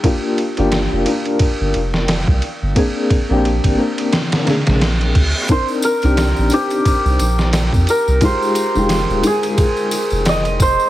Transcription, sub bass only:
X:1
M:4/4
L:1/16
Q:"Swing 16ths" 1/4=88
K:Cm
V:1 name="Sub bass" clef=bass
z3 G,,,2 F,,, z3 G,,, F,,,3 C,, z G,,, | z3 B,,,2 A,,, z4 z B,,,3 D,, z | z3 C,,2 B,,, z3 C,, B,,,3 F,, z C,, | z3 F,,,2 E,,, z4 z F,,,3 F,,, z |]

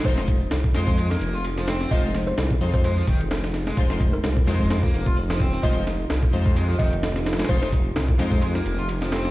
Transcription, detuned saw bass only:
X:1
M:4/4
L:1/8
Q:"Swing 16ths" 1/4=129
K:Fm
V:1 name="Detuned saw bass" clef=bass
F,,,2 C,, F,,2 F,,,3 | F,,,2 C,, F,,2 F,,,3 | F,,,2 C,, F,,2 F,,,2 E,,, | F,,,2 C,, F,,2 F,,,3 |
F,,,2 C,, F,,2 F,,,3 |]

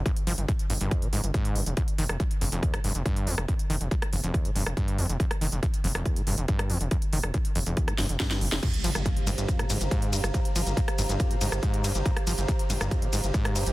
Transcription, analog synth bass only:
X:1
M:4/4
L:1/16
Q:1/4=140
K:Gphr
V:1 name="Analog synth bass" clef=bass
z2 G,,, G,,, z2 G,,, G,,, z2 G,,, G,,, z2 G,,, F,,, | z2 F,,, F,,, z2 F,,, F,,, z2 F,,, F,,, z2 F,, F,,, | z2 F,,, F,,, z2 F,,, F,,, z2 F,,, F,,, z2 F,, F,,, | z2 F,,, F,,, z2 F,,, F,,, z2 F,,, F,,, z2 F,, F,,, |
z2 F,,, F,,, z2 F,,, F,,, z2 F,,, F,,, z2 F,,, F,,, | z2 G,,, G,,, z2 G,,, G,,, z2 G,,, G,,, z2 G,, G,,, | z2 G,,, G,,, z2 G,,, G,,, z2 G,,, G,,, z2 G,, G,,, | z2 G,,, G,,, z2 G,,, G,,, z2 G,,, G,,, z2 G,, G,,, |]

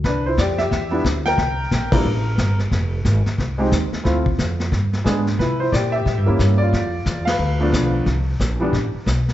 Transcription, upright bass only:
X:1
M:4/4
L:1/8
Q:"Swing" 1/4=180
K:C
V:1 name="Upright bass" clef=bass
C,,2 F,,2 E,,2 D,,2 | C,,2 _B,,,2 A,,,2 G,,,2 | F,,,2 _A,,, z C,,2 _E,, z | D,,2 F,,2 G,,2 _A,,2 |
C,2 _B,,2 (3A,, G,, E,, G,,2 | F,,2 E,,2 D,,2 B,,,2 | C,,2 _B,,,2 A,,, z =B,,,2 |]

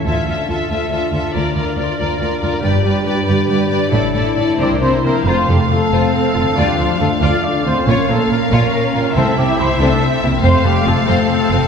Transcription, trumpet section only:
X:1
M:6/8
L:1/8
Q:3/8=93
K:Dm
V:1 name="Trumpet section"
z6 | z6 | z6 | z3 d c B |
[K:F] c G A2 A A | G F A f d c | _d A B2 B B | A G c A z2 |
c G A2 A A |]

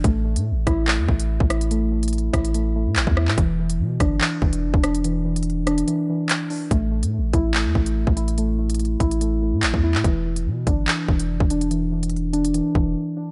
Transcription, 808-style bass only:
X:1
M:4/4
L:1/16
Q:1/4=144
K:Ephr
V:1 name="808-style bass" clef=bass
A,,,3 A,,3/2 A,,,3/2 A,,,3 E,, A,,,3 A,,,3- | A,,,6 A,,,4- A,,, A,, A,,, E,,2 A,, | E,,,4 B,,2 G,,,2 z2 E,,,2 F,,, E,,,3- | E,,,8 z8 |
A,,,3 A,,3/2 A,,,3/2 A,,,3 E,, A,,,3 A,,,3- | A,,,6 A,,,4- A,,, A,, A,,, E,,2 A,, | E,,,4 B,,2 G,,,2 z2 E,,,2 F,,, E,,,3- | E,,,8- E,,, z E,,,2 z4 |]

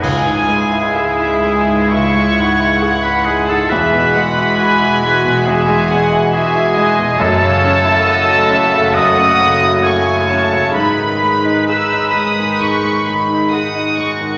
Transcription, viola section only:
X:1
M:4/4
L:1/8
Q:1/4=67
K:C#m
V:1 name="Viola section"
[G,E]8 | [G,F]8 | [A,F]8 | [G,D]8 |]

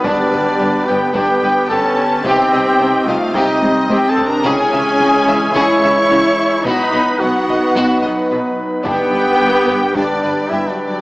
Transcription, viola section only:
X:1
M:4/4
L:1/8
Q:1/4=109
K:Glyd
V:1 name="Viola section"
G,3 B, B,2 C2 | =C3 A, G,2 (3C C D | C4 E4 | ^D2 B,4 z2 |
B,4 G,2 (3G, F, F, |]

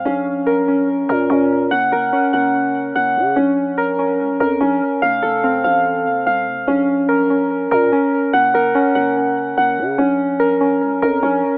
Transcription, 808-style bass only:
X:1
M:4/4
L:1/16
Q:1/4=145
K:Bbm
V:1 name="808-style bass" clef=bass
B,,,8- B,,,2 B,,2 B,,4 | G,,,2 G,,,2 z2 G,,,6 G,,,2 D,2 | B,,,8 D,, B,,, F,,2 B,,,2 z2 | F,,,2 F,,,4 =A,,,4 G,,,2 E,,,2 G,,, E,,, |
B,,,8- B,,,2 B,,2 z4 | G,,,2 G,,,2 z2 G,,,6 G,,,2 D,2 | B,,,8 D,, B,,, F,,2 B,,,2 z2 |]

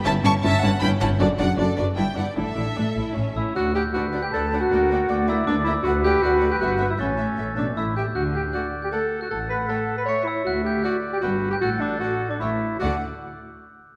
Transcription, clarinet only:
X:1
M:3/4
L:1/16
Q:1/4=156
K:D
V:1 name="Clarinet"
z12 | z12 | z8 z2 E2 | F2 G2 F3 G A3 F- |
F6 E2 D2 E2 | F2 G2 F3 G F3 E | C6 D2 E2 G2 | F2 G2 F3 G A3 F |
A2 B2 A3 B c2 E2 | F2 G2 F3 G F3 G | F2 D2 F3 D E4 | F2 z8 z2 |]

